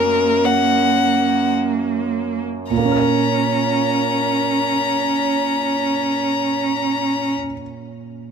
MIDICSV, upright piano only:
0, 0, Header, 1, 2, 480
1, 0, Start_track
1, 0, Key_signature, -5, "minor"
1, 0, Tempo, 500000
1, 7981, End_track
2, 0, Start_track
2, 0, Title_t, "Upright piano"
2, 0, Program_c, 0, 0
2, 0, Control_c, 0, 64, 127
2, 0, Note_on_c, 0, 42, 49
2, 0, Note_on_c, 0, 58, 34
2, 0, Note_on_c, 0, 61, 34
2, 0, Note_on_c, 0, 70, 35
2, 2557, Note_off_c, 0, 58, 0
2, 2560, Note_off_c, 0, 61, 0
2, 2562, Note_off_c, 0, 70, 0
2, 2599, Note_on_c, 0, 46, 27
2, 2617, Note_off_c, 0, 42, 0
2, 2617, Control_c, 0, 64, 0
2, 2665, Note_on_c, 0, 58, 30
2, 2735, Note_on_c, 0, 61, 28
2, 2799, Note_on_c, 0, 70, 30
2, 2812, Control_c, 0, 64, 127
2, 2867, Note_on_c, 0, 73, 26
2, 7028, Note_off_c, 0, 46, 0
2, 7094, Note_off_c, 0, 58, 0
2, 7164, Note_off_c, 0, 61, 0
2, 7228, Note_off_c, 0, 70, 0
2, 7296, Note_off_c, 0, 73, 0
2, 7981, End_track
0, 0, End_of_file